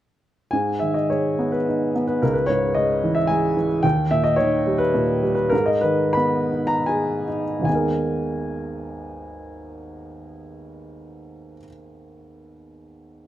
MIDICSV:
0, 0, Header, 1, 2, 480
1, 0, Start_track
1, 0, Key_signature, 5, "minor"
1, 0, Tempo, 570885
1, 448, Time_signature, 3, 2, 24, 8
1, 1407, Tempo, 544465
1, 4287, Tempo, 588235
1, 4767, Tempo, 639659
1, 5247, Tempo, 715137
1, 5727, Tempo, 786370
1, 8127, Tempo, 800000
1, 9601, End_track
2, 0, Start_track
2, 0, Title_t, "Upright piano"
2, 0, Program_c, 0, 0
2, 427, Note_on_c, 0, 80, 57
2, 446, Note_on_c, 0, 44, 44
2, 592, Control_c, 0, 64, 127
2, 661, Note_off_c, 0, 80, 0
2, 668, Note_on_c, 0, 76, 51
2, 693, Note_on_c, 0, 51, 31
2, 793, Note_on_c, 0, 75, 47
2, 803, Note_off_c, 0, 76, 0
2, 913, Note_off_c, 0, 75, 0
2, 922, Note_on_c, 0, 73, 47
2, 930, Note_on_c, 0, 56, 36
2, 1167, Note_on_c, 0, 59, 37
2, 1277, Note_on_c, 0, 71, 53
2, 1296, Note_off_c, 0, 73, 0
2, 1413, Note_on_c, 0, 63, 39
2, 1625, Note_off_c, 0, 51, 0
2, 1641, Note_off_c, 0, 59, 0
2, 1654, Note_on_c, 0, 59, 39
2, 1733, Note_off_c, 0, 71, 0
2, 1760, Note_on_c, 0, 71, 51
2, 1858, Note_off_c, 0, 44, 0
2, 1864, Note_off_c, 0, 56, 0
2, 1878, Note_off_c, 0, 71, 0
2, 1882, Note_off_c, 0, 63, 0
2, 1887, Note_off_c, 0, 59, 0
2, 1889, Note_on_c, 0, 70, 53
2, 1890, Note_on_c, 0, 37, 47
2, 1905, Control_c, 0, 64, 0
2, 1989, Note_on_c, 0, 71, 54
2, 2002, Note_off_c, 0, 70, 0
2, 2084, Control_c, 0, 64, 127
2, 2104, Note_on_c, 0, 73, 57
2, 2125, Note_off_c, 0, 71, 0
2, 2132, Note_on_c, 0, 44, 34
2, 2342, Note_off_c, 0, 73, 0
2, 2352, Note_on_c, 0, 75, 60
2, 2371, Note_on_c, 0, 49, 37
2, 2607, Note_on_c, 0, 52, 42
2, 2706, Note_on_c, 0, 76, 62
2, 2732, Note_off_c, 0, 75, 0
2, 2818, Note_on_c, 0, 80, 66
2, 2839, Note_off_c, 0, 76, 0
2, 2842, Note_on_c, 0, 56, 45
2, 3054, Note_off_c, 0, 44, 0
2, 3062, Note_off_c, 0, 52, 0
2, 3075, Note_on_c, 0, 52, 42
2, 3161, Note_off_c, 0, 80, 0
2, 3284, Note_off_c, 0, 37, 0
2, 3291, Note_off_c, 0, 49, 0
2, 3304, Note_off_c, 0, 56, 0
2, 3305, Note_on_c, 0, 79, 69
2, 3310, Note_off_c, 0, 52, 0
2, 3314, Note_on_c, 0, 39, 50
2, 3332, Control_c, 0, 64, 0
2, 3482, Control_c, 0, 64, 127
2, 3536, Note_off_c, 0, 79, 0
2, 3554, Note_on_c, 0, 76, 64
2, 3556, Note_on_c, 0, 46, 37
2, 3666, Note_on_c, 0, 75, 65
2, 3669, Note_off_c, 0, 76, 0
2, 3778, Note_on_c, 0, 73, 60
2, 3784, Note_off_c, 0, 75, 0
2, 3808, Note_on_c, 0, 51, 44
2, 4046, Note_on_c, 0, 55, 43
2, 4148, Note_on_c, 0, 71, 70
2, 4165, Note_off_c, 0, 73, 0
2, 4273, Note_off_c, 0, 46, 0
2, 4287, Note_on_c, 0, 46, 41
2, 4510, Note_off_c, 0, 55, 0
2, 4522, Note_on_c, 0, 55, 42
2, 4603, Note_off_c, 0, 71, 0
2, 4619, Note_on_c, 0, 71, 61
2, 4732, Note_off_c, 0, 39, 0
2, 4740, Note_on_c, 0, 70, 66
2, 4744, Note_off_c, 0, 51, 0
2, 4753, Note_off_c, 0, 46, 0
2, 4759, Note_off_c, 0, 71, 0
2, 4760, Note_off_c, 0, 55, 0
2, 4761, Note_on_c, 0, 44, 47
2, 4778, Control_c, 0, 64, 0
2, 4864, Note_on_c, 0, 75, 60
2, 4875, Note_off_c, 0, 70, 0
2, 4914, Control_c, 0, 64, 127
2, 4979, Note_on_c, 0, 71, 60
2, 4984, Note_off_c, 0, 75, 0
2, 5001, Note_on_c, 0, 51, 35
2, 5218, Note_on_c, 0, 83, 66
2, 5244, Note_off_c, 0, 71, 0
2, 5247, Note_on_c, 0, 59, 38
2, 5478, Note_on_c, 0, 63, 35
2, 5584, Note_on_c, 0, 82, 69
2, 5599, Note_off_c, 0, 83, 0
2, 5709, Note_off_c, 0, 82, 0
2, 5714, Note_on_c, 0, 80, 57
2, 5731, Note_on_c, 0, 68, 37
2, 5939, Note_off_c, 0, 51, 0
2, 5956, Note_off_c, 0, 63, 0
2, 5966, Note_on_c, 0, 63, 37
2, 6054, Note_off_c, 0, 80, 0
2, 6162, Note_on_c, 0, 32, 35
2, 6180, Note_off_c, 0, 44, 0
2, 6182, Note_off_c, 0, 59, 0
2, 6183, Note_on_c, 0, 39, 35
2, 6195, Note_off_c, 0, 68, 0
2, 6195, Note_on_c, 0, 80, 53
2, 6198, Note_on_c, 0, 56, 34
2, 6201, Note_off_c, 0, 63, 0
2, 6214, Control_c, 0, 64, 0
2, 6218, Note_on_c, 0, 59, 31
2, 6237, Note_on_c, 0, 63, 33
2, 6255, Note_on_c, 0, 70, 41
2, 6323, Control_c, 0, 64, 127
2, 8561, Note_off_c, 0, 32, 0
2, 8581, Note_off_c, 0, 39, 0
2, 8593, Note_off_c, 0, 80, 0
2, 8596, Note_off_c, 0, 56, 0
2, 8615, Note_off_c, 0, 59, 0
2, 8634, Note_off_c, 0, 63, 0
2, 8652, Note_off_c, 0, 70, 0
2, 9601, End_track
0, 0, End_of_file